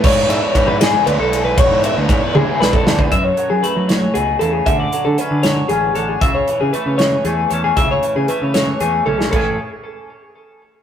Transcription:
<<
  \new Staff \with { instrumentName = "Clean electric guitar" } { \time 6/8 \key a \major \tempo 4. = 77 cis''8 e''16 cis''8 b'16 gis'8 b'16 a'8 b'16 | cis''8 e''16 cis''8 b'16 gis'8 b'16 a'8 b'16 | e''16 cis''8 gis'16 b'8 cis''8 gis'8 a'16 gis'16 | e''16 d''8 a'16 b'8 cis''8 gis'8 a'16 gis'16 |
e''16 cis''8 gis'16 b'8 cis''8 gis'8 a'16 gis'16 | e''16 cis''8 gis'16 b'8 cis''8 gis'8 a'16 gis'16 | a'8 r2 r8 | }
  \new Staff \with { instrumentName = "Overdriven electric guitar" } { \time 6/8 \key a \major <gis b e' b' d''>8 <e' b' d''>8 <b e' b' d''>8 <gis b e' b' d''>8 <b e' b' d''>4 | <gis b e' b' d''>8 <e' b' d''>8 <b e' b' d''>8 <gis b e' b' d''>8 <b e' b' d''>4 | r2. | r2. |
r2. | r2. | r2. | }
  \new Staff \with { instrumentName = "Clean electric guitar" } { \clef bass \time 6/8 \key a \major << { r2. | r2. | r4 a2~ | a4 cis'4 cis'8 d'8 |
r4 a4 a8 cis'8~ | cis'4 a4 a8 cis'8 | <e cis' e' gis'>8 r2 r8 | } \\ { r2. | r2. | fis,8 fis4 a,8 b,8 cis8 | d8 fis4 fis4. |
cis8 e4 e4. | cis8 e4 e4. | a,8 r2 r8 | } >> }
  \new Staff \with { instrumentName = "Picked electric bass" } { \clef bass \time 6/8 \key a \major gis,8 gis,16 r16 gis,4 d,16 b,,8.~ | b,,16 gis,8 d,16 gis,16 r16 d,16 r16 b,,16 r16 d,8 | fis,8 r16 fis16 r16 fis8. cis,8 e,8 | d,8 r16 d16 r16 d8. a,,8 a,,8 |
cis,8 r16 cis16 r16 cis8. e,8 e,8 | cis,8 r16 cis16 r16 cis8. e,8 b,,8 | a,,8 r2 r8 | }
  \new DrumStaff \with { instrumentName = "Drums" } \drummode { \time 6/8 <cymc bd>8 cymr8 <bd cymr>8 <cymr sn>8 cymr8 cymr8 | <bd cymr>8 cymr8 <bd cymr>8 tommh8 sn16 bd16 sn16 bd16 | <hh bd>8 hh8 hh8 <hh sn>8 hh8 hh8 | <hh bd>8 hh8 hh8 <hh sn>8 hh8 hh8 |
<hh bd>8 hh8 hh8 <hh sn>8 hh8 hh8 | <hh bd>8 hh8 hh8 <hh sn>8 hh8 tommh16 sn16 | <cymc bd>4. r4. | }
>>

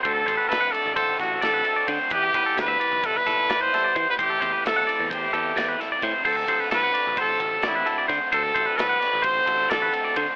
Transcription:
<<
  \new Staff \with { instrumentName = "Clean electric guitar" } { \time 9/8 \key d \mixolydian \tempo 4. = 87 c''16 a'16 c''16 b'16 a'16 fis''16 d''8 c''8 a'8 d''16 b'16 a'16 d''16 c''8 | b'16 g'16 b'16 a'16 g'16 e''16 d''8 b'8 a'8 d''16 b'16 a'16 d''16 c''8 | c''16 a'16 c''16 b'16 a'16 fis''16 d''8 c''8 a'8 d''16 b'16 a'16 d''16 c''8 | c''16 a'16 c''16 b'16 a'16 fis''16 d''8 c''8 a'8 d''16 b'16 a'16 d''16 c''8 |
c''16 a'16 c''16 b'16 a'16 fis''16 d''8 c''8 a'8 d''16 b'16 a'16 d''16 c''8 | }
  \new Staff \with { instrumentName = "Trumpet" } { \time 9/8 \key d \mixolydian a'4 b'8 a'8 a'8 fis'8 a'4 r8 | g'4 b'4 a'16 b'4 c''4 b'16 | g'4 a'4 g'4. r4 | a'4 b'4 a'4 e'4 r8 |
a'4 b'4 c''4 a'4 r8 | }
  \new Staff \with { instrumentName = "Overdriven electric guitar" } { \time 9/8 \key d \mixolydian <d a c' fis'>8 <a c' fis'>8 <d a c' fis'>8 <a c' fis'>8 <d a c' fis'>8 <d a c' fis'>8 <d a c' fis'>8 <a c' fis'>8 <d a c' fis'>8 | <e g b e'>8 <g b e'>8 <e g b e'>8 <g b e'>8 <e g b e'>8 <e g b e'>8 <e g b e'>8 <g b e'>8 <e g b e'>8 | <a, e a c' e'>8 <a c' e'>8 <a, e a c' e'>8 <a c' e'>8 <e a c' e'>8 <a, e a c' e'>8 <e a c' e'>8 <a c' e'>8 <a, e a c' e'>8 | <d a c' fis'>8 <a c' fis'>8 <d a c' fis'>8 <a c' fis'>8 <d a c' fis'>8 <d a c' fis'>8 <d a c' fis'>8 <a c' fis'>8 <d a c' fis'>8 |
<d a c' fis'>8 <a c' fis'>8 <d a c' fis'>8 <a c' fis'>8 <d a c' fis'>8 <d a c' fis'>8 <d a c' fis'>8 <a c' fis'>8 <d a c' fis'>8 | }
  \new Staff \with { instrumentName = "Picked electric bass" } { \clef bass \time 9/8 \key d \mixolydian d,8 a,,16 r16 c,8 r16 a,,8. a,,8 a,,8 r8 d16 r16 | e,8 b,,16 r16 d,8 r16 b,,8. b,,8 b,,8 r8 e16 r16 | a,,8 e,16 r16 g,,8 r16 e,8. e,8 e,8 r8 a,16 r16 | d,8 a,,16 r16 c,8 r16 a,,8. a,,8 a,,8 r8 d16 r16 |
d,8 a,,16 r16 c,8 r16 a,,8. a,,8 a,,8 r8 d16 r16 | }
  \new DrumStaff \with { instrumentName = "Drums" } \drummode { \time 9/8 <bd cymr>8 <bd cymr>8 <cymr sn>8 cymr8 <bd cymr>8 <bd cymr sn>8 <cymr sn>8 cymr8 <bd cymr>8 | <bd cymr>8 <bd cymr>8 <cymr sn>8 cymr8 <bd cymr>8 <bd cymr sn>8 <cymr sn>8 <cymr sn>8 <bd cymr>8 | <bd cymr>8 <bd cymr>8 <cymr sn>8 cymr8 <bd cymr>8 <bd cymr>8 <cymr sn>8 <cymr sn>8 <bd cymr>8 | <cymc bd>8 <bd cymr>8 <cymr sn>8 cymr8 <bd cymr>8 <bd cymr>8 <cymr sn>8 cymr8 <bd cymr sn>8 |
<bd cymr>8 <bd cymr>8 <cymr sn>8 <cymr sn>8 <bd cymr>8 <bd cymr>8 <cymr sn>8 cymr8 <bd cymr>8 | }
>>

